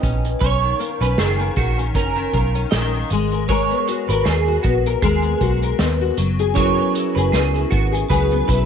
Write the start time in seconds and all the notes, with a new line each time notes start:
Already playing: D#3 B3 C#4 E4 G4 D#5 G5 G#5 A#5
0.02 A#1 C#4 B4, kick, closed hi-hat
0.25 closed hi-hat
0.41 B1 C#4 C#5, kick, closed hi-hat
0.62 D#3
0.79 A#3, closed hi-hat
1.01 B1 C#4 B4, closed hi-hat
1.18 F#1 D#3 G#4, snare, closed hi-hat
1.39 A#3, closed hi-hat
1.56 A#1 D#3 F#4, kick, closed hi-hat
1.78 C#4, closed hi-hat
1.95 F#1 C#4 A#4, kick, closed hi-hat
2.15 D#3, closed hi-hat
2.33 B1 A#3 A#4, kick, closed hi-hat
2.55 C#4, closed hi-hat
2.71 A#1 D#3 D#5, snare, closed hi-hat
2.94 A#3
3.10 G#1 G#3, closed hi-hat
3.32 A#4, closed hi-hat
3.49 G#3 A#4 C#5, kick, closed hi-hat
3.70 B3, closed hi-hat
3.88 F#4, closed hi-hat
4.09 G#1 A#4 B4, closed hi-hat
4.25 D#2 B3 G#4, snare, closed hi-hat
4.48 F#4
4.63 A#1 B3 F#4, kick, closed hi-hat
4.86 A#4, closed hi-hat
5.02 D#2 G#3 G#4 A#4, kick, closed hi-hat
5.22 B3, closed hi-hat
5.41 B1 F#4, kick, closed hi-hat
5.62 A#4, closed hi-hat
5.79 D#2 B3, snare, closed hi-hat
6.01 F#4
6.17 F#1 F#3, closed hi-hat
6.39 G#4, closed hi-hat
6.54 F#3 C#4 E4 G#4 C#5, kick, closed hi-hat
6.59 A#4
6.66 B4
6.78 B3
6.95 E4, closed hi-hat
7.15 F#1 G#4 B4, closed hi-hat
7.32 C#2 B3 G#4, snare, closed hi-hat
7.53 E4, closed hi-hat
7.71 G#1 B3 F#4, kick, closed hi-hat
7.92 G#4, closed hi-hat
8.10 C#2 F#3 G#4 B4, kick, closed hi-hat
8.30 B3, closed hi-hat
8.48 B1 E4 B4, kick, closed hi-hat